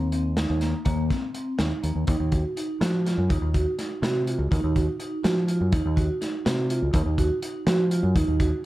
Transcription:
0.00 0.45 D#2 medium
0.12 0.29 C4 medium
0.12 closed hi-hat medium
0.37 0.53 D#4 medium
0.37 snare medium
0.37 closed hi-hat medium
0.50 0.73 D#2 medium
0.61 0.77 A#3 medium
0.61 snare soft
0.61 closed hi-hat medium
0.85 1.09 D#2 medium
0.85 1.01 A#3 medium
0.85 kick medium
0.85 closed hi-hat medium
1.10 1.26 C4 medium
1.10 kick medium
1.10 snare soft
1.10 closed hi-hat medium
1.34 1.50 C4 medium
1.34 closed hi-hat medium
1.58 1.71 D#2 medium
1.58 1.74 D#4 medium
1.58 snare medium
1.58 closed hi-hat medium
1.83 1.95 D#2 medium
1.83 1.99 A#3 medium
1.83 closed hi-hat medium
1.95 2.07 D#2 medium
2.07 2.19 D#2 medium
2.07 2.23 D#4 medium
2.07 kick loud
2.07 closed hi-hat medium
2.20 2.43 D#2 medium
2.32 2.48 F#4 medium
2.32 kick medium
2.32 closed hi-hat medium
2.57 2.72 D#4 medium
2.57 closed hi-hat medium
2.81 3.15 F3 medium
2.81 2.97 F#4 medium
2.81 snare loud
2.81 closed hi-hat medium
3.06 3.21 F4 medium
3.06 snare soft
3.06 closed hi-hat medium
3.18 3.29 F#2 medium
3.29 3.41 D#2 medium
3.29 3.45 D#4 medium
3.29 kick medium
3.29 closed hi-hat medium
3.42 3.64 D#2 medium
3.54 3.70 F#4 medium
3.54 kick medium
3.54 closed hi-hat medium
3.79 3.94 D#4 medium
3.79 snare soft
3.79 closed hi-hat medium
4.02 4.37 C3 medium
4.02 4.19 F#4 medium
4.02 snare loud
4.02 closed hi-hat medium
4.27 4.42 F4 medium
4.27 closed hi-hat medium
4.39 4.50 C#2 medium
4.51 4.63 D#2 loud
4.51 4.67 D#4 medium
4.51 kick loud
4.51 closed hi-hat medium
4.64 4.86 D#2 medium
4.76 4.91 F#4 medium
4.76 kick medium
4.76 closed hi-hat medium
5.00 5.15 D#4 medium
5.00 closed hi-hat medium
5.23 5.59 F3 medium
5.23 5.39 F#4 medium
5.23 snare medium
5.23 closed hi-hat medium
5.48 5.64 F4 medium
5.48 closed hi-hat medium
5.61 5.72 F#2 medium
5.72 5.84 D#2 loud
5.72 5.88 D#4 medium
5.72 kick loud
5.72 closed hi-hat medium
5.85 6.08 D#2 medium
5.96 6.12 F#4 medium
5.96 kick medium
5.96 closed hi-hat medium
6.21 6.37 D#4 medium
6.21 snare soft
6.21 closed hi-hat medium
6.45 6.80 C3 medium
6.45 6.61 F#4 medium
6.45 snare medium
6.45 closed hi-hat medium
6.69 6.85 F4 medium
6.69 closed hi-hat medium
6.82 6.94 C#2 medium
6.93 7.05 D#2 medium
6.93 7.09 D#4 medium
6.93 kick loud
6.93 closed hi-hat medium
7.06 7.29 D#2 medium
7.18 7.34 F#4 medium
7.18 kick medium
7.18 closed hi-hat medium
7.42 7.58 D#4 medium
7.42 closed hi-hat medium
7.67 8.01 F3 medium
7.67 7.83 F#4 medium
7.67 snare medium
7.67 closed hi-hat medium
7.91 8.07 F4 medium
7.91 closed hi-hat medium
8.03 8.15 F#2 medium
8.15 8.27 D#2 loud
8.15 8.31 D#4 medium
8.15 kick loud
8.15 closed hi-hat medium
8.28 8.51 D#2 medium
8.40 8.56 F#4 medium
8.40 kick medium
8.40 closed hi-hat medium

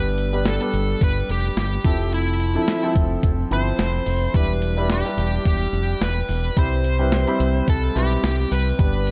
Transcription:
0.00 0.57 G1 medium
0.00 0.21 G3 medium
0.00 0.21 B3 medium
0.00 0.21 D4 medium
0.00 0.21 B4 medium
0.00 0.48 B4 loud
0.18 closed hi-hat medium
0.33 0.53 G3 medium
0.33 0.53 B3 medium
0.33 0.53 D4 medium
0.33 0.53 B4 medium
0.45 1.03 A4 medium
0.45 snare loud
0.45 closed hi-hat medium
0.61 1.42 G3 medium
0.61 1.42 B3 medium
0.61 1.42 D4 medium
0.61 1.42 B4 medium
0.61 closed hi-hat soft
0.73 0.93 G1 medium
0.73 closed hi-hat medium
1.01 1.21 G1 medium
1.01 1.28 B4 loud
1.01 kick medium
1.01 closed hi-hat medium
1.29 1.49 F1 medium
1.29 1.57 G4 medium
1.29 closed hi-hat medium
1.56 1.76 G1 medium
1.56 2.14 G4 medium
1.56 snare loud
1.56 closed hi-hat medium
1.84 2.56 F1 medium
1.84 2.40 F3 medium
1.84 2.40 C4 medium
1.84 2.40 E4 medium
1.84 2.41 A4 medium
1.84 kick loud
1.84 open hi-hat medium
2.12 2.93 E4 medium
2.12 closed hi-hat medium
2.40 closed hi-hat medium
2.55 2.75 F3 medium
2.55 2.75 C4 medium
2.55 2.75 E4 medium
2.55 2.75 A4 medium
2.68 snare loud
2.68 closed hi-hat medium
2.83 3.33 F3 medium
2.83 3.33 C4 medium
2.83 3.34 E4 medium
2.83 3.34 A4 medium
2.83 closed hi-hat soft
2.95 3.15 F1 medium
2.95 kick medium
2.95 closed hi-hat medium
3.23 3.43 F1 loud
3.23 kick medium
3.23 closed hi-hat medium
3.51 3.71 G1 medium
3.51 4.12 F3 medium
3.51 4.13 C4 medium
3.51 4.13 E4 medium
3.51 4.36 C5 medium
3.51 4.13 B5 medium
3.51 closed hi-hat medium
3.78 3.98 F1 loud
3.78 snare loud
3.78 closed hi-hat medium
4.06 4.26 F1 medium
4.06 open hi-hat medium
4.34 5.02 E1 medium
4.34 4.65 G3 medium
4.34 4.65 D4 medium
4.34 4.65 E4 medium
4.34 4.65 B4 medium
4.34 4.87 B4 medium
4.34 kick loud
4.34 closed hi-hat medium
4.62 closed hi-hat medium
4.77 4.97 G3 medium
4.77 4.97 D4 medium
4.77 4.97 E4 medium
4.77 4.97 B4 medium
4.90 5.46 G4 medium
4.90 snare medium
4.90 closed hi-hat medium
5.05 5.86 G3 medium
5.05 5.86 D4 medium
5.05 5.86 E4 medium
5.05 5.87 B4 medium
5.05 closed hi-hat soft
5.17 5.37 E1 medium
5.17 closed hi-hat medium
5.45 5.65 E1 loud
5.45 6.04 G4 medium
5.45 kick medium
5.45 closed hi-hat medium
5.72 5.93 F1 medium
5.72 closed hi-hat medium
6.01 6.21 E1 loud
6.01 6.58 B4 medium
6.01 snare loud
6.01 closed hi-hat medium
6.28 6.49 E1 medium
6.28 open hi-hat medium
6.57 7.24 C2 loud
6.57 6.87 G3 medium
6.57 6.88 C4 medium
6.57 6.88 E4 medium
6.57 7.69 C5 medium
6.57 6.88 B5 medium
6.57 kick loud
6.57 closed hi-hat medium
6.84 closed hi-hat medium
6.99 7.19 G3 medium
6.99 7.19 C4 medium
6.99 7.20 E4 medium
6.99 7.20 B4 medium
7.12 snare medium
7.12 closed hi-hat medium
7.27 7.78 G3 medium
7.27 7.78 C4 medium
7.27 7.78 E4 medium
7.27 7.78 B5 medium
7.27 closed hi-hat soft
7.40 7.60 C2 medium
7.40 closed hi-hat medium
7.68 7.88 C2 loud
7.68 7.97 A4 medium
7.68 kick medium
7.68 closed hi-hat medium
7.95 8.15 B1 medium
7.95 8.57 G3 medium
7.95 8.57 C4 medium
7.95 8.57 E4 medium
7.95 8.53 G4 medium
7.95 8.57 B4 medium
7.95 closed hi-hat medium
8.11 closed hi-hat medium
8.23 8.43 C2 medium
8.23 snare loud
8.23 closed hi-hat medium
8.51 8.71 C2 medium
8.51 9.11 B4 medium
8.51 open hi-hat medium
8.79 9.11 G1 medium
8.79 9.09 G3 medium
8.79 9.10 B3 medium
8.79 9.10 D4 medium
8.79 9.10 B4 medium
8.79 kick loud
8.79 closed hi-hat medium
9.07 closed hi-hat medium

